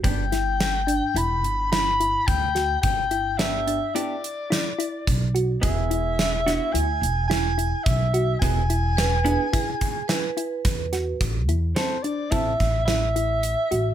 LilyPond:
<<
  \new Staff \with { instrumentName = "Soprano saxophone" } { \time 5/4 \key g \major \tempo 4 = 108 g''2 b''4 b''4 g''4 | g''4 e''4 d''2~ d''8 r8 | e''2 gis''4 gis''4 e''4 | gis''1 r4 |
r4 c''8 d''8 e''4 e''2 | }
  \new Staff \with { instrumentName = "Vibraphone" } { \time 5/4 \key g \major r1 r4 | r1 r4 | r1 r4 | r4 b'4 gis'4 b'2 |
r1 r4 | }
  \new Staff \with { instrumentName = "Hollow-body jazz guitar" } { \time 5/4 \key g \major <b d' g'>8 r1 r8 | r4 <b d' g'>8 r8 <b d' g'>8 r2 r8 | <b e' gis'>4. <b e' fis'>8 r2. | <b e' gis'>8 r4 <b e' gis'>8 r2. |
r4 <c' e' a'>8 r8 <c' e' a'>8 r2 r8 | }
  \new Staff \with { instrumentName = "Synth arpeggio sound" } { \time 5/4 \key g \major r8 e'4 d'8 e'4 e'8 e'4 fis'8 | r8 e'4 d'8 e'4 e'8 e'4 fis'8 | r8 e'4 d'8 e'4 e'8 e'4 fis'8 | r8 e'4 d'8 e'4 e'8 e'4 fis'8 |
r8 e'4 d'8 e'4 e'8 e'4 fis'8 | }
  \new Staff \with { instrumentName = "Upright bass" } { \clef bass \time 5/4 \key g \major g,,2 e,,8 g,,4. d,4 | g,,2 r2 b,,4 | e,,2 d,8 e,,4. b,,4 | e,,2 r2 e,4 |
a,,8 e,8 r4 a,,8 a,,2 a,,8 | }
  \new DrumStaff \with { instrumentName = "Drums" } \drummode { \time 5/4 <hh bd>8 <hh sn>8 <hh sn>8 hh8 hh8 hh8 <hh sn>8 hh8 <hh bd>8 <hh sn>8 | <hh bd>8 hh8 <hh sn>8 hh8 hh8 hh8 <hh sn>8 hh8 <hh bd>8 hh8 | <hh bd>8 hh8 <hh sn>8 <hh sn>8 hh8 hh8 <hh sn>8 hh8 <hh bd>8 hh8 | <hh bd>8 hh8 <hh sn>8 hh8 <hh bd>8 <hh bd>8 <hh sn>8 hh8 <hh bd sn>8 <hh sn>8 |
<hh bd>8 hh8 <hh sn>8 hh8 <hh bd>8 <hh bd sn>8 <hh sn>8 hh8 hh8 hh8 | }
>>